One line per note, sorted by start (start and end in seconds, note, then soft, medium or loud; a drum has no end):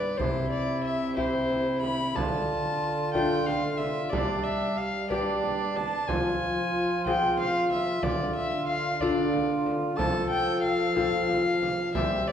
0.00 0.15 G2 soft
0.00 0.15 G2 medium
0.00 0.16 B3 soft
0.00 0.16 G4 soft
0.00 0.15 B4 medium
0.00 0.19 D5 medium
0.17 2.12 C3 medium
0.17 2.12 C3 soft
0.17 1.15 E4 medium
0.17 0.50 C5 medium
0.17 frame drum medium
0.51 0.84 D5 medium
0.84 1.15 E5 medium
1.16 2.12 E4 soft
1.16 2.17 E4 medium
1.16 2.12 G4 soft
1.16 1.81 C5 medium
1.16 frame drum soft
1.50 frame drum soft
1.82 2.16 B5 medium
1.82 frame drum soft
2.15 4.08 D3 soft
2.15 4.08 D3 medium
2.15 4.12 F4 medium
2.15 3.13 A5 medium
2.15 frame drum medium
3.14 4.08 A3 soft
3.14 4.09 D4 soft
3.14 4.09 F4 soft
3.14 3.47 G5 medium
3.14 frame drum soft
3.46 3.79 F5 medium
3.46 frame drum soft
3.78 4.11 E5 medium
3.78 frame drum soft
4.09 5.76 G3 medium
4.09 5.76 G3 soft
4.09 4.81 D4 medium
4.09 4.45 D5 medium
4.09 frame drum medium
4.44 4.78 E5 medium
4.77 5.10 F5 medium
5.09 6.04 B3 soft
5.09 6.03 D4 medium
5.09 6.04 D4 soft
5.09 6.04 G4 soft
5.09 5.78 D5 medium
5.09 frame drum soft
5.43 frame drum soft
5.76 6.10 A5 medium
5.76 frame drum soft
6.08 7.99 F3 medium
6.08 8.00 F3 soft
6.08 7.99 F4 medium
6.08 7.05 G#5 medium
6.08 frame drum medium
7.06 8.00 C4 soft
7.06 8.00 F4 soft
7.06 8.00 G#4 soft
7.06 7.38 G5 medium
7.06 frame drum soft
7.38 7.71 F5 medium
7.38 frame drum soft
7.70 8.04 E5 medium
7.70 frame drum soft
8.03 9.94 D3 soft
8.03 9.95 D3 medium
8.03 8.99 F4 medium
8.03 8.35 D5 medium
8.03 frame drum medium
8.36 8.67 E5 medium
8.67 9.02 F5 medium
9.00 9.95 D4 soft
9.00 9.99 F4 medium
9.00 9.95 F4 soft
9.00 9.95 A4 soft
9.00 9.66 D5 medium
9.00 frame drum soft
9.33 frame drum soft
9.66 frame drum soft
9.97 11.91 F3 medium
9.97 11.67 A4 medium
9.97 10.28 A5 medium
9.97 frame drum medium
10.30 10.62 G5 medium
10.62 11.92 F5 loud
10.96 11.91 C4 soft
10.96 11.91 F4 soft
10.96 11.91 A4 soft
10.96 frame drum soft
11.29 frame drum soft
11.63 frame drum soft
11.94 12.32 G3 medium
11.94 12.32 G3 soft
11.94 12.32 C4 soft
11.94 12.32 G4 soft
11.94 12.32 C5 medium
11.94 12.29 E5 medium
11.94 frame drum medium
12.27 12.32 D5 medium